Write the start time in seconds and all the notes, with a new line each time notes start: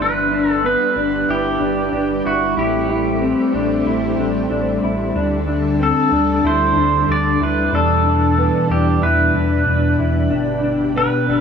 0.00 G1 G3 B3 D4 B4
0.31 D4
0.51 A4
0.64 B3 B4
0.95 G1 D4
1.28 G1 E4 G4
1.60 G1 D4
1.92 G1 D4
2.25 G1 E4 F#4
2.57 A1 A3 C4 E4 G4
2.89 E4
3.21 C4
3.53 A1 D4
3.85 A1 E4
4.18 A1 D4
4.50 A1 D4
4.83 A1 E4
5.14 D2 D3 D4 A4
5.48 D4
5.80 C4 A4
6.11 D2 D4
6.43 D2 E4 C5
6.75 D2 D4
7.07 D2 D4
7.12 D5
7.40 D2 E4 B4
7.72 E2 B2 E3 D4 A4
8.05 D4
8.38 B3
8.69 E2 D4 G4
9.02 E2 E4 B4
9.34 E2 D4
9.66 E2 D4
9.99 E2 E4
10.31 G1 D4 G4
10.63 D4
10.96 B3 B4
11.28 G1 D4